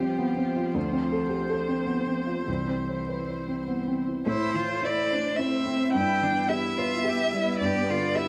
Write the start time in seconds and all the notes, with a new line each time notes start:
Already playing: A1 F3 G3 F4 G4 C5
0.00 C4
0.19 B3
0.37 C4
0.56 F4
0.74 D2 A3 C5
0.93 C4
1.12 A4
1.30 G4
1.50 A4
1.68 C4
1.87 B3
2.07 C4
2.27 F4
2.47 C2 E3 G3 E4 C5
2.67 C4
2.89 C5
3.08 B4
3.28 C5
3.48 C4
3.68 B3
3.88 C4
4.08 E4
4.26 A2 A3 E4 C5
4.54 E3 F4
4.83 E4 D5
5.10 D4 C5
5.37 C4 E4 E5
5.66 C4
5.93 G2 B3 E4 B4 G5
6.22 E3 D4
6.49 E4 G4 E5
6.78 F4 B4
7.04 G4
7.33 G3 E4
7.59 G2 G4 D5
7.65 G4
7.89 D3 F4
8.15 E4 G4 E5